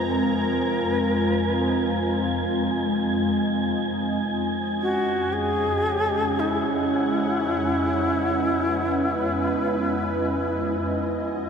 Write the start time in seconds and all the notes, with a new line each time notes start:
Already playing: F2 G#3 C4 F4 D#5 G#5 A#5
0.05 A#4
4.32 C#4
4.82 F#4
5.33 G#4
5.69 F#5
6.39 E4
7.67 B4